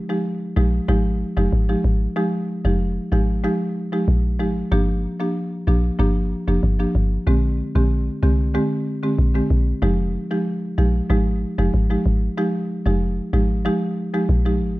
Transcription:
0.09 F3 G#3 D#4 G4
0.56 A#1 F3 G#3 D#4 G4
0.88 G#1 F3 G#3 D#4 G4
1.37 F1 F3 G#3 D#4 G4
1.53 G#1
1.69 F3 G#3 D#4 G4
1.84 G#1
2.16 F3 G#3 D#4 G4
2.65 F1 F3 G#3 D#4 G4
3.12 G#1 F3 G#3 D#4 G4
3.44 F3 G#3 D#4 G4
3.92 F3 G#3 D#4 G4
4.08 A#1
4.40 G#1 F3 G#3 D#4 G4
4.71 G1 F3 A#3 D4 G4
5.20 F3 A#3 D4 G4
5.67 A#1 F3 A#3 D4 G4
5.99 G1 F3 A#3 D4 G4
6.48 F1 F3 A#3 D4 G4
6.63 G1
6.80 F3 A#3 D4 G4
6.95 G1
7.27 A#1 D3 G#3 C4 G4
7.75 A#1 D3 G#3 C4 G4
8.22 C2 D3 G#3 C4 G4
8.54 D3 G#3 C4 G4
9.03 D3 G#3 C4 G4
9.19 A#1
9.35 D3 G#3 C4 G4
9.50 A#1
9.82 F1 F3 G#3 D#4 G4
10.31 F3 G#3 D#4 G4
10.78 A#1 F3 G#3 D#4 G4
11.10 G#1 F3 G#3 D#4 G4
11.58 F1 F3 G#3 D#4 G4
11.74 G#1
11.90 F3 G#3 D#4 G4
12.06 G#1
12.37 F3 G#3 D#4 G4
12.86 F1 F3 G#3 D#4 G4
13.33 G#1 F3 G#3 D#4 G4
13.65 F3 G#3 D#4 G4
14.14 F3 G#3 D#4 G4
14.29 A#1
14.46 F3 G#3 D#4 G4
14.61 G#1

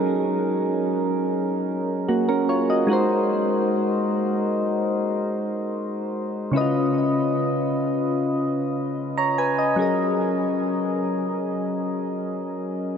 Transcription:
Already playing: F#3 C#4 D#4 G#4 A#4
2.09 A#3 F#4
2.29 C#4 A#4
2.49 F4 C#5
2.70 F#4 D#5
2.87 G#3 D#4 F#4
2.92 A#4 C5
6.52 C#3 C#4 E4
6.56 B4 D#5
6.61 F4
9.18 C#5 A#5
9.38 B4 G#5
9.59 D#5
9.76 F#3 C#4 G#4
9.80 A#4 D#5

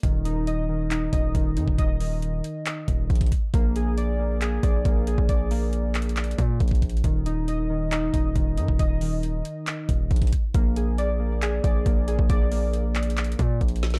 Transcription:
0.03 D#1 D#3, kick, closed hi-hat
0.25 D#4, closed hi-hat
0.47 D#5, closed hi-hat
0.69 D#3
0.90 D#4, clap, closed hi-hat
1.13 D#1 D#5, kick, closed hi-hat
1.35 D#1 D#3, kick, closed hi-hat
1.57 F#2 D#4, closed hi-hat
1.68 D#1, kick
1.78 D#5, kick, closed hi-hat
2.00 D#3, open hi-hat
2.22 closed hi-hat
2.44 closed hi-hat
2.66 clap, closed hi-hat
2.88 D#1, kick, closed hi-hat
3.10 A#1, kick, closed hi-hat
3.16 closed hi-hat
3.21 kick, closed hi-hat
3.26 closed hi-hat
3.32 kick, closed hi-hat
3.54 A#1 A#3, kick, closed hi-hat
3.76 G#4, closed hi-hat
3.97 D5, closed hi-hat
4.19 A#3
4.41 G#4, clap, closed hi-hat
4.63 A#1 D5, kick, closed hi-hat
4.85 A#1 A#3, kick, closed hi-hat
5.07 G#4, closed hi-hat
5.18 A#1, kick
5.29 D5, kick, closed hi-hat
5.51 A#3, open hi-hat
5.73 closed hi-hat
5.95 clap, closed hi-hat
6.02 closed hi-hat
6.09 closed hi-hat
6.17 clap, closed hi-hat
6.24 closed hi-hat
6.31 closed hi-hat
6.38 A#2, kick, closed hi-hat
6.60 A#1, kick, closed hi-hat
6.68 kick, closed hi-hat
6.75 closed hi-hat
6.82 kick, closed hi-hat
6.89 closed hi-hat
6.97 closed hi-hat
7.04 D#1 D#3, kick, closed hi-hat
7.26 D#4, closed hi-hat
7.48 D#5, closed hi-hat
7.70 D#3
7.91 D#4, clap, closed hi-hat
8.13 D#1 D#5, kick, closed hi-hat
8.36 D#1 D#3, kick, closed hi-hat
8.57 F#2 D#4, closed hi-hat
8.68 D#1, kick
8.79 D#5, kick, closed hi-hat
9.01 D#3, open hi-hat
9.23 closed hi-hat
9.45 closed hi-hat
9.67 clap, closed hi-hat
9.89 D#1, kick, closed hi-hat
10.11 A#1, kick, closed hi-hat
10.16 closed hi-hat
10.22 kick, closed hi-hat
10.27 closed hi-hat
10.33 kick, closed hi-hat
10.54 A#1 A#3, kick, closed hi-hat
10.76 G#4, closed hi-hat
10.98 D5, closed hi-hat
11.20 A#3
11.42 G#4, clap, closed hi-hat
11.64 A#1 D5, kick, closed hi-hat
11.86 A#1 A#3, kick, closed hi-hat
12.08 G#4, closed hi-hat
12.19 A#1, kick
12.29 A#1 D5, kick, closed hi-hat
12.51 A#3, open hi-hat
12.73 closed hi-hat
12.95 clap, closed hi-hat
13.03 closed hi-hat
13.10 closed hi-hat
13.17 clap, closed hi-hat
13.24 closed hi-hat
13.32 closed hi-hat
13.39 A#2, kick, closed hi-hat
13.61 A#1, kick, closed hi-hat
13.68 closed hi-hat
13.76 closed hi-hat
13.83 snare, closed hi-hat
13.90 snare, closed hi-hat

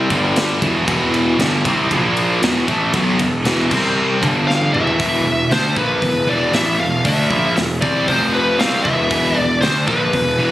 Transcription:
Already playing: C3
0.10 G1 G2 D3 G3, kick, ride
0.36 snare, ride
0.61 E1 E2 B2 E3, kick, ride
0.88 E1 E2 B2 E3, kick, ride
1.14 ride
1.39 G1 G2 D3 G3, snare, ride
1.65 C2 C3 G3 C4, kick, ride
1.91 A#1 A#2 F3 A#3, kick, ride
2.17 ride
2.42 E1 E2 B2 E3, snare, ride
2.67 A1 A2 E3 A3, kick, ride
2.94 B1 B2 F#3 B3, kick, ride
3.19 E1 E2 B2, kick, ride
3.44 E1 E2 B2 E3, snare, ride
3.69 C2 C3 G3 C4, kick, crash
4.21 G1 G2 D3 G3, kick, ride
4.48 F5, snare
4.62 high tom
4.73 E1 E2 B2 E3 E5, mid tom
4.87 floor tom
4.98 E1 E2 B2 E3, kick, open hi-hat
5.24 E1 E2 B2
5.50 D2 D3 A3 D4 C5, snare, open hi-hat
5.76 A#1 A#2 F3 A#3 B4, kick
6.02 E1 E2 B2, kick, open hi-hat
6.27 E1 E2 B2 E3 D5
6.52 A1 A2 E3 A3 E5, snare, open hi-hat
6.78 E1 E2 B2 F5
7.04 D2 D3 A3 D4 E5, kick, open hi-hat
7.30 A#1 A#2 F3 A#3, kick
7.55 E1 E2 B2, snare, open hi-hat
7.82 C2 C3 G3 C4 D5, kick
8.08 F1 F2 C3 F3 C5, kick, open hi-hat
8.34 B4
8.58 C2 C3 G3 C4 F5, snare, open hi-hat
8.84 E1 E2 B2 E3 E5, kick
9.11 E1 E2 B2 E3, kick, open hi-hat
9.36 E1 E2 B2 D5
9.60 D2 D3 A3 D4 C5, snare, open hi-hat
9.87 A#1 A#2 F3 A#3 B4, kick
10.12 E1 E2 B2, kick, open hi-hat
10.37 E1 E2 B2 E3

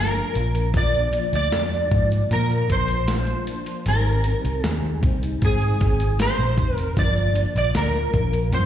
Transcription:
Already playing: G1 D3 F3
0.00 A#3 D4 A#4
0.15 closed hi-hat, shaker
0.35 A#1 F3 A#3 D4, closed hi-hat
0.55 closed hi-hat, shaker
0.74 A#2 D3 F3 A#3 D4 D5, kick, closed hi-hat, shaker
0.95 shaker
1.12 F3 A#3 D4, closed hi-hat
1.33 D2 D5, closed hi-hat, shaker
1.51 F2 D3 F3 A#3, snare, closed hi-hat, shaker
1.55 D4
1.73 shaker
1.90 G#2 F3 A#3 D4, kick, closed hi-hat
2.11 closed hi-hat, shaker
2.29 A#2 D3 F3 A#3 D4 A#4, closed hi-hat, shaker
2.50 closed hi-hat, shaker
2.68 A#1 F3 A#3 D4 C5, kick, closed hi-hat
2.88 closed hi-hat, shaker
3.08 D3 F3 A#3 D4, snare, closed hi-hat, shaker
3.27 closed hi-hat, shaker
3.46 F3 A#3 D4, closed hi-hat
3.66 closed hi-hat, shaker
3.86 G#1 G#2 D#3 G3 C4 D#4 A#4, closed hi-hat, shaker
4.06 shaker
4.24 C4 D#4, closed hi-hat
4.28 G3
4.44 C2, closed hi-hat, shaker
4.63 D#2 D#3 G3 C4 D#4 G#4, snare, closed hi-hat, shaker
4.84 shaker
5.01 C2 G3 C4 D#4, kick, closed hi-hat
5.22 closed hi-hat, shaker
5.41 G#2 D#3 C4 D#4 G#4, kick, closed hi-hat, shaker
5.61 closed hi-hat, shaker
5.79 G#1 C4 D#4, kick, snare, closed hi-hat
6.00 closed hi-hat, shaker
6.18 D#3 G3 C4 D#4 C5, snare, closed hi-hat, shaker
6.38 A#1, shaker
6.56 F1 G3 C4 D#4, kick, closed hi-hat
6.75 A#4, closed hi-hat, shaker
6.96 G1 G2 D3 F3 A#3 D4 D5, kick, closed hi-hat, shaker
7.16 shaker
7.34 F3 A#3 D4, closed hi-hat
7.55 A#1 D5, closed hi-hat, shaker
7.73 D2 D3 F3 A#3 D4 A#4, snare, closed hi-hat, shaker
7.94 shaker
8.12 A#1 F3 A#3 D4, kick, closed hi-hat
8.32 closed hi-hat, shaker
8.51 G2 D3 F3 A#3 D4 C5, closed hi-hat, shaker

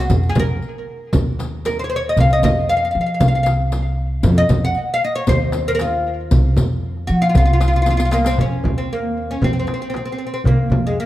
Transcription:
0.00 F#4
0.10 F2, riq, frame drum, darbuka dum
0.23 riq, darbuka ka
0.29 G#4
0.35 F2, riq, frame drum, darbuka dum
0.40 A#4
0.50 darbuka ka
0.62 riq
0.75 darbuka ka
0.88 darbuka ka
1.13 D#2, riq, frame drum, darbuka dum
1.39 riq, darbuka tek, frame drum
1.65 A#4, riq, darbuka tek, frame drum
1.79 C5
1.84 C#5
1.90 C5
1.96 C#5
2.09 D#5
2.17 C2 F5, riq, darbuka dum, frame drum
2.30 D#5, riq
2.42 F2 D#5, riq, darbuka dum, frame drum
2.57 darbuka ka
2.69 F5, riq
2.77 F5
2.83 F5, darbuka ka
2.91 F5
2.95 F3, darbuka ka
3.01 F5
3.06 F5
3.14 F5
3.20 C2 F5, riq, darbuka dum, frame drum
3.28 F5
3.35 F5
3.43 F5, riq, darbuka tek, frame drum
3.72 riq, darbuka tek, frame drum
4.23 F2, riq, frame drum, darbuka dum
4.36 D#5, riq, darbuka ka
4.49 F2, riq, frame drum, darbuka dum
4.65 F#5
4.75 riq
4.89 darbuka ka
4.94 F5
5.02 D#5, darbuka ka
5.15 C#5
5.27 D#2 C5, riq, darbuka dum, frame drum
5.52 riq, darbuka tek, frame drum
5.68 A#4 C5
5.75 A#4
5.79 F4, riq, darbuka tek, frame drum
6.31 C2, riq, darbuka dum, frame drum
6.44 darbuka ka
6.57 F2, riq, frame drum, darbuka dum
6.83 darbuka ka
6.97 darbuka ka
7.07 F3 F#4, riq
7.22 F4, riq, darbuka ka
7.29 F4
7.35 C2 F4, riq, frame drum, darbuka dum
7.46 F4
7.53 F4
7.61 F4, riq, darbuka tek, frame drum
7.68 F4
7.73 F4, riq
7.82 F4
7.86 riq, darbuka tek, frame drum
7.90 F4
7.97 F4, riq, darbuka ka
8.05 F4
8.11 A#3 F4, riq, darbuka tek
8.25 C4, riq, darbuka ka
8.38 F2 C#4, darbuka dum, frame drum
8.64 D#2, darbuka dum, frame drum
8.77 C4, darbuka ka
8.90 A#3, darbuka ka
9.29 C#4, darbuka ka
9.42 F2 C4, darbuka dum, frame drum
9.53 C4
9.59 C4
9.67 C4, darbuka tek, frame drum
9.74 C4
9.82 C4
9.90 C4
9.94 C4, darbuka tek, frame drum
10.05 C4
10.12 C4
10.18 C4, darbuka ka
10.27 C4
10.34 C4
10.44 C2 A#3, darbuka dum, frame drum
10.70 F2, darbuka dum, frame drum
10.84 G#3, darbuka ka
10.98 A#3, darbuka ka

